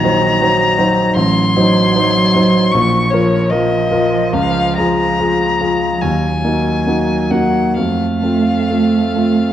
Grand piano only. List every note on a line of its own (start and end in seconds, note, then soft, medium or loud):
0.00 1.19 A#1 medium
0.00 0.04 F#3 medium
0.00 0.37 F#3 soft
0.00 0.04 D#4 medium
0.00 0.37 D#4 soft
0.00 0.05 C5 medium
0.05 0.38 C5 medium
0.42 0.75 F#3 medium
0.42 0.75 D#4 medium
0.42 0.75 C5 medium
0.78 1.13 F#3 medium
0.78 1.13 D#4 medium
0.78 1.13 C5 medium
1.16 1.54 A1 medium
1.56 1.92 F#3 medium
1.56 1.92 D#4 medium
1.56 1.92 C5 medium
1.95 2.30 F#3 medium
1.95 2.31 D#4 medium
1.95 2.31 C5 medium
2.35 2.69 F#3 medium
2.35 2.69 D#4 medium
2.35 2.70 C5 medium
2.74 3.11 A#1 medium
3.13 3.47 F3 medium
3.13 3.47 F4 soft
3.13 3.47 A#4 medium
3.51 3.86 F3 medium
3.51 3.86 F4 soft
3.51 3.87 A#4 medium
3.91 4.29 F3 medium
3.91 4.29 F4 medium
3.91 4.30 A#4 medium
4.33 4.76 C#2 medium
4.77 5.15 F3 medium
4.77 5.15 F4 soft
4.77 5.15 G#4 medium
5.20 5.56 F3 soft
5.20 5.56 F4 soft
5.20 5.57 G#4 soft
5.61 5.98 F3 soft
5.61 5.98 F4 soft
5.61 5.98 G#4 soft
6.02 6.42 D#2 medium
6.44 6.83 A#3 soft
6.44 6.83 D#4 soft
6.44 6.83 F#4 soft
6.86 7.27 A#3 soft
6.86 7.27 D#4 soft
6.86 7.28 F#4 soft
7.31 7.73 A#3 soft
7.31 7.73 D#4 soft
7.31 7.73 F#4 soft
7.77 8.22 F2 soft
8.23 8.66 A3 soft
8.23 8.66 C4 soft
8.23 8.66 F4 soft
8.70 9.12 A3 soft
8.70 9.12 C4 soft
8.70 9.12 F4 soft
9.16 9.53 A3 soft
9.16 9.53 C4 soft
9.16 9.53 F4 soft